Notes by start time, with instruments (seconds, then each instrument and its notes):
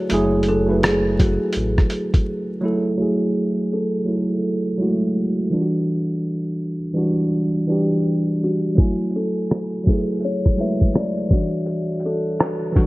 Already playing: tine electric piano F#3 A3 E4 G#4, kalimba F#4
0.09 sub bass F#1, tine electric piano F#3 A3 E4, closed hi-hat
0.14 tine electric piano G#4
0.43 closed hi-hat
0.48 kalimba A4
0.66 tine electric piano F#3 A3 E4
0.71 tine electric piano B4
0.83 kalimba G#4, cross-stick, closed hi-hat
1.19 kalimba F#4, kick, closed hi-hat
1.53 sub bass A1, closed hi-hat
1.78 kick, cross-stick
1.90 closed hi-hat
2.14 kick, closed hi-hat
2.61 tine electric piano F#3 A3 E4
2.65 tine electric piano A4
2.97 tine electric piano F#3 A3 E4
3.02 tine electric piano G#4
3.73 kalimba A4
4.05 tine electric piano F#3 A3 E4
4.10 tine electric piano A4
4.78 tine electric piano F#3 G#3 E4
4.82 tine electric piano A3 F#4
5.50 tine electric piano E3 G3 D4
5.55 tine electric piano F4
5.61 tine electric piano F#4
6.94 tine electric piano E3 G3 D4
6.98 tine electric piano F#4
7.67 tine electric piano E3 G3 D4
7.72 tine electric piano G4
8.44 kalimba F#4
8.75 tine electric piano F#3 A3 E4, kick, closed hi-hat
8.80 tine electric piano G#5
9.11 closed hi-hat
9.16 kalimba A4
9.51 cross-stick, closed hi-hat
9.84 tine electric piano F#3 A3 E4, kick, closed hi-hat
9.88 tine electric piano G#4, kalimba B4
10.20 closed hi-hat
10.25 kalimba C#5
10.46 kick, cross-stick
10.56 tine electric piano F#3 G#3 E4, closed hi-hat
10.60 tine electric piano A3 B4, kalimba E5
10.81 kick, closed hi-hat
10.93 kalimba D5, cross-stick, closed hi-hat
11.17 closed hi-hat
11.29 tine electric piano E3 G3 D4, kick, closed hi-hat
11.33 kalimba F#4, tine electric piano F#4
11.66 closed hi-hat
12.00 closed hi-hat
12.06 kalimba A4
12.40 kalimba B4, cross-stick, closed hi-hat
12.72 tine electric piano E3 G3 D4
12.76 tine electric piano F#4, kick, closed hi-hat